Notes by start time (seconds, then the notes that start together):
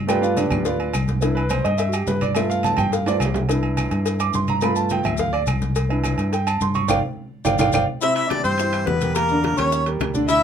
Already playing: G2
0.07 A3 B3 F4 G4 B4 D5 G5, cowbell, high conga, low agogo, claves, maracas
0.22 F4 B4 D5 F5, high conga, maracas
0.36 D4 G4 B4 D5, cowbell, high conga, low agogo, maracas
0.50 D2, high conga, low conga, low agogo, claves, maracas
0.65 F4 B4 D5 F5, cowbell, high conga, maracas
0.80 high conga, low agogo
0.94 C2, cowbell, high conga, low agogo, claves, maracas
1.08 cowbell, high conga, maracas
1.21 B3 D4 E4, cowbell, high conga, low agogo, maracas
1.35 B4, high conga, low agogo
1.49 C5, cowbell, high conga, low agogo, claves, maracas
1.64 G2 D#5, cowbell, high conga, low agogo, maracas
1.78 E5, cowbell, high conga, low agogo, maracas
1.88 F#4
1.93 G4, low agogo, claves, maracas
2.07 G2 B4, cowbell, high conga, low timbale, maracas
2.21 D5, high conga, low agogo, maracas
2.35 A3 B3 F4 E5, cowbell, low agogo, claves, maracas
2.50 F5, high conga, maracas
2.63 A5, cowbell, high conga, low agogo, maracas
2.77 G2 G5, high conga, low conga, low agogo, claves, maracas
2.92 F5, cowbell, high conga, maracas
3.06 A3 B3 F4 D5, high conga, high timbale, low agogo, maracas
3.20 C2, cowbell, high conga, low agogo, claves, maracas
3.25 low timbale
3.34 cowbell, high conga, low timbale, maracas
3.49 B3 D4 E4, cowbell, high conga, low agogo, maracas
3.63 high conga, low agogo
3.77 cowbell, high conga, low agogo, claves, maracas
3.91 G2, cowbell, high conga, low agogo, maracas
4.06 cowbell, high conga, low agogo, maracas
4.20 D6, high conga, low agogo, claves, maracas
4.33 G2 C6, cowbell, high conga, maracas
4.48 A#5, high conga, low agogo, maracas
4.61 A3 B3 F4 B5, cowbell, high conga, low agogo, claves, maracas
4.76 A5, maracas
4.90 G5, cowbell, high conga, low agogo, maracas
5.04 D2 E5, high conga, low conga, low agogo, claves, maracas
5.17 F5, cowbell, high conga, low conga, maracas
5.33 D5, high conga, low agogo
5.47 C2, cowbell, high conga, low agogo, claves, maracas
5.62 cowbell, high conga, maracas
5.76 cowbell, high conga, low agogo, maracas
5.89 B3 D4 E4, high conga, low agogo
6.04 cowbell, high conga, low agogo, claves, maracas
6.18 G2, cowbell, high conga, low agogo, maracas
6.33 G5, cowbell, low agogo, maracas
6.47 A5, high conga, low agogo, claves, maracas
6.61 G2 C6, cowbell, high conga, maracas
6.74 C#6, high conga, low agogo, maracas
6.88 G1 D5 F5 G5, cowbell, high conga, high timbale, claves, maracas
7.45 G1 D5 F5 G5, cowbell, high conga, high timbale, claves, maracas
7.58 G1 D5 F5 G5, cowbell, high conga, high timbale, claves, maracas
7.73 G1 D5 F5 G5, cowbell, high conga, high timbale, claves, maracas
8.01 C3 C4 E4 C5 E5, high bongo, high conga, maracas
8.14 E4 E5, high conga, high timbale, maracas
8.28 E3 D4 E4 G4 D5, high bongo, high conga, high timbale, claves, maracas
8.43 G2 C4 C5, high conga, maracas
8.58 E3 E4 G4, high bongo, high conga, high timbale, maracas
8.73 E3 E4 G4, high conga, high timbale, claves, maracas
8.85 E2 B3 B4, high bongo, low bongo, high conga, low timbale, maracas
9.01 G3 G4 A#4, high conga, high timbale, maracas
9.14 A#3 A#4, high bongo, high conga, high timbale, claves, maracas
9.29 D3 D4 D5, high conga, maracas
9.41 A#3 A#4, high bongo, high conga, high timbale, maracas
9.57 D#2 G3 C#4 G4 A#4 C#5, high bongo, high conga, high timbale, claves, maracas
9.72 high bongo, maracas
9.86 G3 G4 A#4, high bongo, high conga, high timbale, maracas
10.00 D2, high bongo, low bongo, high conga, high timbale, claves, maracas
10.14 D3 D4 D5, high bongo, high conga, maracas
10.29 D3 D4 E4 D5 E5, high bongo, high conga, maracas